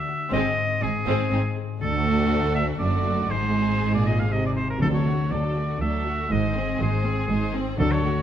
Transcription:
Already playing: D3 D4 B4 D5 E5
0.08 F#4
0.31 G#1 G#2 G#3 C4 D#5
0.58 C4
0.81 G#1 G#2 C4 D#4 G#4 D#5
1.06 G#1 G#2 G#3 C4 C5
1.30 G#1 G#2 C4 D#4 D#5
1.56 G#4
1.81 D2 D3 A3 D4 F#4 A4
2.06 A3
2.30 D5
2.55 A4 E5
2.79 F#1 F#2 A3 D4 F#4 D5
3.05 F#4
3.30 G#1 G#2 G#3 D#4 G#4 C5
3.81 G#2 D#5
3.94 A#2 D5
4.06 G#4 D#5
4.19 F5
4.32 C3 D#5
4.46 D5
4.56 G#4 C5
4.70 A#4
4.80 D2 D3 F#3 D4 A4
4.94 C#5
5.06 A3 F#4
5.30 D2 F#3 D4 A4 D5
5.55 A3 F#4 A4
5.80 D2 F#3 D4 A4 D5 E5
6.06 A3 F#4
6.30 G#1 G#2 G#3 D#4 C5 D#5
6.55 G#3 C4 G#4
6.80 G#1 G#2 G#3 D#4 G#4 C5
7.05 C4 G#4
7.29 G#1 G#2 G#3 D#4 C5
7.54 C4 D#4 G#4
7.79 D2 D3 F#3 D4 A4
7.92 C#5
8.04 A3 F#4

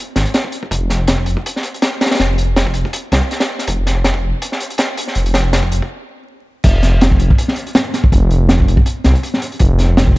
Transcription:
0.16 G#1, snare, closed hi-hat
0.26 closed hi-hat
0.34 snare, closed hi-hat
0.44 kick
0.52 closed hi-hat
0.63 kick
0.71 F1, kick, closed hi-hat
0.90 snare, closed hi-hat
1.08 snare, closed hi-hat
1.18 kick
1.26 F1, closed hi-hat
1.37 kick
1.46 closed hi-hat
1.56 snare
1.63 closed hi-hat
1.74 closed hi-hat
1.82 snare, closed hi-hat
2.01 snare, closed hi-hat
2.06 snare, closed hi-hat
2.11 snare, closed hi-hat
2.15 snare, closed hi-hat
2.19 F1, snare, closed hi-hat
2.38 closed hi-hat
2.56 snare, closed hi-hat
2.67 kick
2.74 F1, closed hi-hat
2.85 kick
2.93 closed hi-hat
3.12 C2, snare, closed hi-hat
3.31 snare, closed hi-hat
3.40 snare, closed hi-hat
3.59 snare, closed hi-hat
3.67 F1, kick, closed hi-hat
3.86 snare, closed hi-hat
4.04 snare, closed hi-hat
4.14 kick
4.23 F1
4.42 closed hi-hat
4.52 snare
4.60 closed hi-hat
4.70 closed hi-hat
4.78 snare, closed hi-hat
4.97 closed hi-hat
5.07 snare
5.15 F1, closed hi-hat
5.26 closed hi-hat
5.34 snare, closed hi-hat
5.53 snare, closed hi-hat
5.63 kick
5.71 F1, closed hi-hat
5.82 kick
6.64 F1, kick, closed hi-hat, crash
6.83 snare, closed hi-hat
7.01 snare, closed hi-hat
7.12 kick
7.19 F1, closed hi-hat
7.30 kick
7.38 closed hi-hat
7.48 snare
7.56 closed hi-hat
7.67 closed hi-hat
7.75 snare, closed hi-hat
7.94 snare, closed hi-hat
8.04 kick
8.12 F1, kick, closed hi-hat
8.31 closed hi-hat
8.49 snare, closed hi-hat
8.60 kick
8.68 F1, closed hi-hat
8.77 kick
8.86 closed hi-hat
9.04 C2, snare, closed hi-hat
9.15 closed hi-hat
9.23 closed hi-hat
9.34 snare
9.42 closed hi-hat
9.52 closed hi-hat
9.59 F1, kick, closed hi-hat
9.79 snare, closed hi-hat
9.97 snare, closed hi-hat
10.07 kick

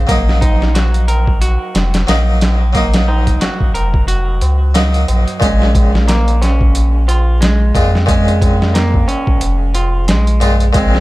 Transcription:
0.07 A#1 F#3 A#3, kick, closed hi-hat, tabla na
0.11 D#4
0.29 snare, tabla na
0.41 D#4, kick, closed hi-hat, tabla na
0.61 snare, tabla na
0.75 F#4, snare, closed hi-hat, tabla na
0.94 closed hi-hat
1.08 A#4, closed hi-hat, tabla na
1.27 kick, tabla na
1.41 F#4, closed hi-hat, tabla na
1.74 F1, snare, closed hi-hat, tabla na
1.94 snare, closed hi-hat, tabla na
2.07 A#1 F#3 A#3 D#4, snare, closed hi-hat, tabla na
2.41 snare, closed hi-hat, tabla na
2.61 tabla na
2.73 F#3 A#3, kick, closed hi-hat, tabla na
2.77 D#4
2.94 snare, closed hi-hat, tabla na
3.08 D#4, tabla na
3.27 kick, closed hi-hat, tabla na
3.41 F#4, snare, closed hi-hat, tabla na
3.60 kick, tabla na
3.74 F1 A#4, closed hi-hat, tabla na
3.94 kick, tabla na
4.08 F#4, closed hi-hat, tabla na
4.28 tabla na
4.41 C#2, closed hi-hat, tabla na
4.61 tabla na
4.75 F#3 A#3 D#4, snare, closed hi-hat, tabla na
4.94 closed hi-hat, tabla na
5.08 A#1, closed hi-hat, tabla na, tabla ge
5.27 closed hi-hat, tabla na
5.40 A#1 A#2 G#3, kick, closed hi-hat, tabla na
5.45 C#4
5.62 snare, tabla na
5.75 kick, closed hi-hat, tabla na
5.95 snare
6.08 A#3, snare, closed hi-hat, tabla na
6.28 closed hi-hat, tabla na
6.41 C#4, snare, closed hi-hat, tabla na
6.61 kick, tabla na
6.75 closed hi-hat, tabla na
7.08 F4, closed hi-hat, tabla na
7.27 tabla na
7.41 G#3, snare, closed hi-hat, tabla na
7.75 F2 A#2 G#3 F4, kick, closed hi-hat, tabla na
7.94 snare, tabla na
8.06 A#2 G#3, kick, closed hi-hat, tabla na
8.11 C#4
8.28 closed hi-hat, tabla na
8.42 kick, closed hi-hat, tabla na
8.60 snare, tabla na
8.74 A#3, snare, closed hi-hat, tabla na
8.94 kick, tabla na
9.08 C#4, closed hi-hat, tabla na
9.27 kick, tabla na
9.41 F1, closed hi-hat, tabla na
9.74 F4, closed hi-hat, tabla na
9.95 tabla na
10.08 A#1 G#3, snare, closed hi-hat, tabla na
10.27 closed hi-hat
10.40 A#2 G#3 F4, closed hi-hat, tabla na, tabla ge
10.60 closed hi-hat, tabla na
10.73 A#1 A#2 G#3, kick, closed hi-hat, tabla na
10.78 C4
10.95 snare

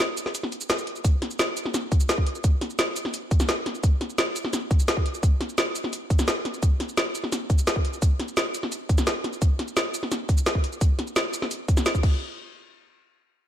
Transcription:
0.17 closed hi-hat, shaker
0.26 snare
0.35 closed hi-hat, shaker
0.43 snare
0.52 closed hi-hat, shaker
0.61 shaker
0.70 snare, closed hi-hat, shaker
0.78 shaker
0.87 closed hi-hat
0.96 shaker
1.04 kick, closed hi-hat, shaker
1.22 snare, closed hi-hat
1.31 shaker
1.39 snare, closed hi-hat, shaker
1.57 closed hi-hat, shaker
1.66 snare
1.74 snare, closed hi-hat, shaker
1.92 kick, closed hi-hat, shaker
2.00 shaker
2.09 snare, closed hi-hat, shaker
2.18 kick
2.27 closed hi-hat
2.35 shaker
2.44 kick, closed hi-hat, shaker
2.61 snare, closed hi-hat
2.70 shaker
2.79 snare, closed hi-hat, shaker
2.96 closed hi-hat, shaker
3.05 snare
3.14 closed hi-hat, shaker
3.31 kick, closed hi-hat, shaker
3.40 snare, shaker
3.49 snare, closed hi-hat, shaker
3.66 snare, closed hi-hat
3.75 shaker
3.83 kick, closed hi-hat, shaker
4.01 snare, closed hi-hat
4.10 shaker
4.18 snare, closed hi-hat, shaker
4.36 closed hi-hat, shaker
4.45 snare
4.53 snare, closed hi-hat, shaker
4.71 kick, closed hi-hat, shaker
4.79 shaker
4.88 snare, closed hi-hat, shaker
4.97 kick
5.06 closed hi-hat
5.14 shaker
5.23 kick, closed hi-hat, shaker
5.41 snare, closed hi-hat
5.49 shaker
5.58 snare, closed hi-hat, shaker
5.75 closed hi-hat, shaker
5.84 snare
5.93 closed hi-hat, shaker
6.10 kick, closed hi-hat, shaker
6.19 snare, shaker
6.28 snare, closed hi-hat, shaker
6.45 snare, closed hi-hat
6.54 shaker
6.63 kick, closed hi-hat, shaker
6.80 snare, closed hi-hat
6.89 shaker
6.97 snare, closed hi-hat, shaker
7.15 closed hi-hat, shaker
7.24 snare
7.32 snare, closed hi-hat, shaker
7.50 kick, closed hi-hat, shaker
7.58 shaker
7.67 snare, closed hi-hat, shaker
7.76 kick
7.85 closed hi-hat
7.93 shaker
8.02 kick, closed hi-hat, shaker
8.20 snare, closed hi-hat
8.28 shaker
8.37 snare, closed hi-hat, shaker
8.54 closed hi-hat, shaker
8.63 snare
8.72 closed hi-hat, shaker
8.89 kick, closed hi-hat, shaker
8.98 snare, shaker
9.07 snare, closed hi-hat, shaker
9.24 snare, closed hi-hat
9.33 shaker
9.42 kick, closed hi-hat, shaker
9.59 snare, closed hi-hat
9.68 shaker
9.77 snare, closed hi-hat, shaker
9.94 closed hi-hat, shaker
10.03 snare
10.12 snare, closed hi-hat, shaker
10.29 kick, closed hi-hat, shaker
10.38 shaker
10.46 snare, closed hi-hat, shaker
10.55 kick
10.64 closed hi-hat
10.73 shaker
10.81 kick, closed hi-hat, shaker
10.99 snare, closed hi-hat
11.07 shaker
11.16 snare, closed hi-hat, shaker
11.34 closed hi-hat, shaker
11.42 snare
11.51 closed hi-hat, shaker
11.68 kick, closed hi-hat, shaker
11.77 snare, shaker
11.86 snare, closed hi-hat, shaker
11.95 kick, shaker
12.03 kick, crash

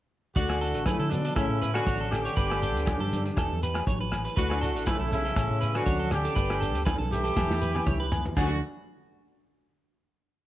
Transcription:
0.35 D2 D3 A3 D4 E4 F#4 D5, kick, closed hi-hat, muted conga, shekere
0.49 cross-stick, low agogo
0.61 E4 A4, closed hi-hat
0.74 A1, closed hi-hat, shekere
0.86 A2 A3 E4 B4, kick, cross-stick, closed hi-hat, muted conga, high conga, low agogo, shekere
1.00 D3 A4
1.10 B2 F#3 B3 D4, closed hi-hat, high conga, shekere
1.25 A4, closed hi-hat
1.35 A1 A2 C#3 C#4 E4 A4, kick, cross-stick, closed hi-hat, muted conga, low agogo, shekere
1.49 A2
1.62 B4, closed hi-hat, muted conga, shekere
1.73 D3 D4 F#4, cross-stick, closed hi-hat, low agogo
1.86 A1 C#4 C#5, kick, closed hi-hat, high conga, shekere
2.01 A4
2.10 D3 E3 D4 G4, cross-stick, closed hi-hat, low agogo, shekere
2.25 C#5, closed hi-hat, shekere
2.36 G1 G2 B3 D4 B4, kick, closed hi-hat, muted conga, shekere
2.50 cross-stick, low agogo
2.62 D4 A4, closed hi-hat, shekere
2.76 D2, closed hi-hat, shekere
2.86 C#3, muted clean electric guitar stroke, kick, cross-stick, closed hi-hat, muted conga, high conga, low agogo, shekere
3.00 G2 A4
3.12 D3, closed hi-hat, high conga, shekere
3.25 muted clean electric guitar stroke, closed hi-hat
3.37 E1 E3 E4 A4, kick, cross-stick, closed hi-hat, muted conga, high conga, low agogo, shekere
3.52 E2
3.63 G4 B4, closed hi-hat, shekere
3.74 cross-stick, closed hi-hat, low agogo
3.87 A1 F#3 C#5, kick, closed hi-hat, high conga, shekere
4.01 B4
4.12 E3, cross-stick, closed hi-hat, low agogo, shekere
4.25 B4, closed hi-hat, shekere
4.36 D2 D3 A3 D4 E4 F#4 B4, kick, closed hi-hat, shekere
4.50 cross-stick, low agogo
4.61 E4 A4, closed hi-hat, shekere
4.76 A1, closed hi-hat, shekere
4.86 A2 C#3 A3 E4 B4, kick, cross-stick, closed hi-hat, muted conga, high conga, low agogo, shekere
5.00 B1 A4
5.11 B2 C#3 C#4 E4, closed hi-hat, high conga, shekere
5.25 A4, closed hi-hat
5.36 A1 A2 C#4 A4, kick, cross-stick, closed hi-hat, muted conga, low agogo, shekere
5.50 A2
5.61 C#4 B4, closed hi-hat, muted conga, shekere
5.75 D3 D4 F#4, cross-stick, closed hi-hat, low agogo
5.86 D2 C#4 C#5, kick, closed hi-hat, high conga, shekere
6.00 A4
6.11 D3 E3 D4 G4, cross-stick, closed hi-hat, low agogo, shekere
6.25 A4, closed hi-hat, shekere
6.35 G1 G2 B3 D4 B4, kick, closed hi-hat, shekere
6.50 cross-stick, low agogo
6.60 D4 A4, closed hi-hat, shekere
6.75 D2, closed hi-hat
6.85 B3 B4, kick, cross-stick, closed hi-hat, muted conga, high conga, low agogo, shekere
6.98 B1 A4
7.11 E3 G3 E4 G4, closed hi-hat, high conga, shekere
7.24 A4, closed hi-hat
7.36 E1 E3 A4, muted nylon-string guitar stroke, kick, snare, muted conga, high conga, low agogo, shekere
7.50 E2, snare
7.61 E4 B4, muted conga, shekere
7.75 high tom, low agogo, shekere
7.86 C#2 E4 C#5, kick, mid tom, high conga, shekere
8.00 B4
8.12 B3, floor tom, low agogo, shekere
8.25 floor tom, shekere
8.37 D2 D3 A3 D4 E4 F#4, muted nylon-string guitar stroke, kick, crash, muted conga, low agogo, shekere

